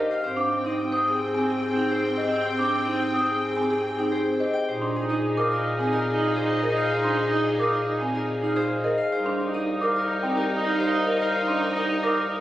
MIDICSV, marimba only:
0, 0, Header, 1, 2, 480
1, 0, Start_track
1, 0, Tempo, 555556
1, 200, Time_signature, 4, 2, 24, 8
1, 10717, End_track
2, 0, Start_track
2, 0, Title_t, "Marimba"
2, 0, Program_c, 0, 12
2, 0, Note_on_c, 0, 70, 60
2, 114, Note_off_c, 0, 70, 0
2, 314, Note_on_c, 0, 62, 66
2, 474, Note_off_c, 0, 62, 0
2, 559, Note_on_c, 0, 63, 59
2, 716, Note_off_c, 0, 63, 0
2, 797, Note_on_c, 0, 72, 59
2, 955, Note_off_c, 0, 72, 0
2, 1161, Note_on_c, 0, 60, 58
2, 1279, Note_on_c, 0, 68, 59
2, 1317, Note_off_c, 0, 60, 0
2, 1436, Note_off_c, 0, 68, 0
2, 1521, Note_on_c, 0, 63, 61
2, 1643, Note_on_c, 0, 68, 62
2, 1677, Note_off_c, 0, 63, 0
2, 1797, Note_off_c, 0, 68, 0
2, 1883, Note_on_c, 0, 72, 60
2, 2037, Note_off_c, 0, 72, 0
2, 2243, Note_on_c, 0, 62, 73
2, 2397, Note_off_c, 0, 62, 0
2, 2481, Note_on_c, 0, 63, 64
2, 2637, Note_off_c, 0, 63, 0
2, 2723, Note_on_c, 0, 72, 56
2, 2877, Note_off_c, 0, 72, 0
2, 3079, Note_on_c, 0, 60, 60
2, 3201, Note_on_c, 0, 68, 61
2, 3236, Note_off_c, 0, 60, 0
2, 3357, Note_off_c, 0, 68, 0
2, 3443, Note_on_c, 0, 63, 66
2, 3562, Note_on_c, 0, 68, 67
2, 3597, Note_off_c, 0, 63, 0
2, 3717, Note_off_c, 0, 68, 0
2, 3804, Note_on_c, 0, 72, 59
2, 3958, Note_off_c, 0, 72, 0
2, 4162, Note_on_c, 0, 62, 74
2, 4317, Note_off_c, 0, 62, 0
2, 4402, Note_on_c, 0, 63, 65
2, 4557, Note_off_c, 0, 63, 0
2, 4643, Note_on_c, 0, 70, 60
2, 4797, Note_off_c, 0, 70, 0
2, 5003, Note_on_c, 0, 60, 63
2, 5122, Note_on_c, 0, 68, 57
2, 5157, Note_off_c, 0, 60, 0
2, 5277, Note_off_c, 0, 68, 0
2, 5362, Note_on_c, 0, 63, 70
2, 5484, Note_on_c, 0, 68, 72
2, 5517, Note_off_c, 0, 63, 0
2, 5638, Note_off_c, 0, 68, 0
2, 5723, Note_on_c, 0, 70, 66
2, 5877, Note_off_c, 0, 70, 0
2, 6082, Note_on_c, 0, 62, 71
2, 6237, Note_off_c, 0, 62, 0
2, 6319, Note_on_c, 0, 63, 61
2, 6476, Note_off_c, 0, 63, 0
2, 6557, Note_on_c, 0, 70, 69
2, 6715, Note_off_c, 0, 70, 0
2, 6919, Note_on_c, 0, 60, 60
2, 7039, Note_on_c, 0, 68, 63
2, 7076, Note_off_c, 0, 60, 0
2, 7196, Note_off_c, 0, 68, 0
2, 7279, Note_on_c, 0, 63, 65
2, 7401, Note_on_c, 0, 68, 70
2, 7436, Note_off_c, 0, 63, 0
2, 7557, Note_off_c, 0, 68, 0
2, 7639, Note_on_c, 0, 70, 70
2, 7796, Note_off_c, 0, 70, 0
2, 8001, Note_on_c, 0, 62, 87
2, 8156, Note_off_c, 0, 62, 0
2, 8240, Note_on_c, 0, 63, 62
2, 8396, Note_off_c, 0, 63, 0
2, 8481, Note_on_c, 0, 70, 62
2, 8637, Note_off_c, 0, 70, 0
2, 8841, Note_on_c, 0, 60, 64
2, 8961, Note_on_c, 0, 67, 68
2, 8997, Note_off_c, 0, 60, 0
2, 9117, Note_off_c, 0, 67, 0
2, 9198, Note_on_c, 0, 63, 72
2, 9318, Note_on_c, 0, 67, 67
2, 9356, Note_off_c, 0, 63, 0
2, 9476, Note_off_c, 0, 67, 0
2, 9557, Note_on_c, 0, 70, 72
2, 9715, Note_off_c, 0, 70, 0
2, 9919, Note_on_c, 0, 62, 80
2, 10076, Note_off_c, 0, 62, 0
2, 10159, Note_on_c, 0, 63, 70
2, 10316, Note_off_c, 0, 63, 0
2, 10395, Note_on_c, 0, 70, 69
2, 10555, Note_off_c, 0, 70, 0
2, 10717, End_track
0, 0, End_of_file